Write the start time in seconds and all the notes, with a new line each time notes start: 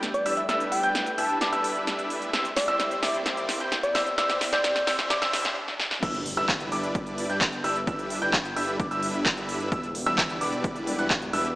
Already playing: G2 E3 A3 B3 G4, riser
0.03 snare, closed hi-hat
0.14 D5, closed hi-hat
0.26 G3 D4 E4 B4 E5 E6, open hi-hat
0.37 E5, closed hi-hat
0.49 G3 D4 E4 B4 E5 E6, snare, closed hi-hat
0.60 closed hi-hat
0.72 G5, open hi-hat
0.83 G3 D4 E4 B4 G5 G6, closed hi-hat
0.95 snare, closed hi-hat
1.06 closed hi-hat
1.18 G3 D4 E4 B4 E5 A5 E6, open hi-hat
1.30 closed hi-hat
1.41 G3 D4 E4 B4 D5 D6, snare, closed hi-hat
1.53 G3 D4 E4 B4 E5 E6, closed hi-hat
1.64 open hi-hat
1.76 closed hi-hat
1.87 snare, closed hi-hat
1.99 closed hi-hat
2.10 open hi-hat
2.22 closed hi-hat
2.33 C2 C3 G3 C4 E4 G4 C5 E5 E6, snare, closed hi-hat
2.45 closed hi-hat
2.56 D5, snare, open hi-hat
2.68 G3 C4 E4 C5 E5 E6, closed hi-hat
2.80 snare, closed hi-hat
2.91 closed hi-hat
3.03 G3 C4 E4 C5 D5 E5 D6, snare, open hi-hat
3.14 E5, closed hi-hat
3.26 snare, closed hi-hat
3.37 closed hi-hat
3.49 snare, open hi-hat
3.60 G3 C4 E4 C5 G5 G6, closed hi-hat
3.72 snare, closed hi-hat
3.83 D5, closed hi-hat
3.95 G3 C4 E4 C5 E5 E6, snare, open hi-hat
4.06 closed hi-hat
4.18 G3 C4 E4 C5 D5 E5 E6, snare, closed hi-hat
4.30 snare, closed hi-hat
4.41 snare, open hi-hat
4.53 G3 C4 E4 C5 D5 G5 G6, snare
4.64 snare, closed hi-hat
4.76 snare, closed hi-hat
4.87 G3 C4 E4 C5 E5 E6, snare, open hi-hat
4.99 snare, closed hi-hat
5.10 G3 C4 E4 C5 D5 D6, snare, closed hi-hat
5.22 G3 C4 E4 C5 E5 E6, snare, closed hi-hat
5.33 snare, open hi-hat
5.45 snare
5.68 snare
5.80 snare
5.91 snare
6.03 G1 G3 D4 E4 A4 B4 E5 E6, kick, closed hi-hat, crash, impact
6.14 closed hi-hat
6.26 open hi-hat
6.37 G1 G3 D4 E4 B4 E5 E6, closed hi-hat
6.49 kick, clap, closed hi-hat
6.60 closed hi-hat
6.72 G1 G3 D4 E4 B4 D5 D6, open hi-hat
6.83 closed hi-hat
6.95 kick, closed hi-hat
7.06 closed hi-hat
7.18 open hi-hat
7.30 G1 G3 D4 E4 B4 G5 G6, closed hi-hat
7.41 kick, clap, closed hi-hat
7.53 closed hi-hat
7.64 G1 G3 D4 E4 B4 E5 E6, open hi-hat
7.76 closed hi-hat
7.87 G1 G3 D4 E4 B4 E5 E6, kick, closed hi-hat
7.99 closed hi-hat
8.10 open hi-hat
8.22 G1 G3 D4 E4 B4 G5 G6, closed hi-hat
8.33 kick, clap, closed hi-hat
8.45 closed hi-hat
8.56 G1 G3 D4 E4 B4 E5 E6, open hi-hat
8.80 G1 G3 D4 E4 B4 D5 D6, kick, closed hi-hat
8.91 G1 G3 D4 E4 B4 E5 E6, closed hi-hat
9.03 open hi-hat
9.14 closed hi-hat
9.26 kick, clap, closed hi-hat
9.37 closed hi-hat
9.49 open hi-hat
9.60 closed hi-hat
9.72 E1 E3 G3 B3 D4 E4 F#4 G4 B4 E5 E6, kick, closed hi-hat
9.83 closed hi-hat
9.95 open hi-hat
10.06 E1 G3 D4 E4 B4 E5 E6, closed hi-hat
10.18 kick, clap, closed hi-hat
10.30 closed hi-hat
10.41 E1 G3 D4 E4 B4 D5 D6, open hi-hat
10.53 closed hi-hat
10.64 kick, closed hi-hat
10.76 closed hi-hat
10.87 open hi-hat
10.99 E1 G3 D4 E4 B4 F#5 F#6, closed hi-hat
11.10 kick, clap, closed hi-hat
11.22 closed hi-hat
11.33 E1 G3 D4 E4 B4 E5 E6, open hi-hat
11.45 closed hi-hat